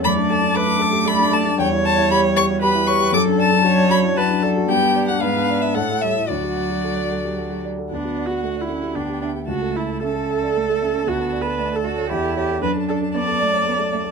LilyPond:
<<
  \new Staff \with { instrumentName = "Violin" } { \time 3/4 \key d \major \tempo 4 = 116 b''8 a''8 d'''4 b''8 a''8 | g''8 a''8 b''8 cis'''8 b''8 cis'''8 | d'''8 a''4 b''8 a''8 r8 | g''8. fis''16 eis''8. e''16 fis''8 e''8 |
d''2~ d''8 r8 | fis''2 g''4 | a''2.~ | a''2. |
a''2. | }
  \new Staff \with { instrumentName = "Grand piano" } { \time 3/4 \key d \major fis,16 d'16 a'16 d'16 a'16 d'16 a'16 g'16 a'16 d'16 a'16 d'16 | e,16 e'16 cis''16 e'16 g'16 cis''16 g'16 fis'16 g'16 e'16 cis''16 g'16 | fis,16 d'16 d''16 d'16 fis'16 d''16 fis'16 e'16 fis'16 d'16 d''16 fis'16 | g,16 d'16 d''16 d'16 gis,16 d'16 d''16 d'16 a,16 e'16 cis''16 e'16 |
d,16 fis'16 d''8 a'16 d''16 a'16 g'16 a'16 fis'16 d''16 a'16 | d,16 fis'16 d''16 fis'16 a'16 d''16 a'16 g'16 d,16 g'16 e''16 g'16 | cis,16 a'16 e''16 a'16 e''16 a'16 e''16 d''16 a'16 a16 e''8 | d,16 a'16 d''16 a'16 d''16 a'8 cis''16 e,16 a'16 cis''16 a'16 |
fis,16 a'16 d''16 a'16 d''16 a'16 d''16 cis''16 a'16 a16 d''16 a'16 | }
  \new Staff \with { instrumentName = "Viola" } { \time 3/4 \key d \major d''4 b'8 a'8 d''4 | cis''2 b'4 | a'4 cis''4 b'8 a'8 | g'4 b'4 a'4 |
fis'2~ fis'8 r8 | \tuplet 3/2 { d'4 fis'8~ fis'8 e'4 } d'8 d'8 | fis'8 e'8 a'2 | \tuplet 3/2 { fis'4 b'8~ b'8 a'4 } g'8 g'8 |
b'8 a'8 d''2 | }
  \new Staff \with { instrumentName = "Cello" } { \time 3/4 \key d \major a4 a2 | g2. | fis2 fis4 | b4 b4 a8 g8 |
fis2~ fis8 r8 | b4 a8 cis'8 b4 | a4 cis'4 a8 cis'8 | b4 a8 fis'8 e'4 |
d'4 b8 a8 b8 a8 | }
>>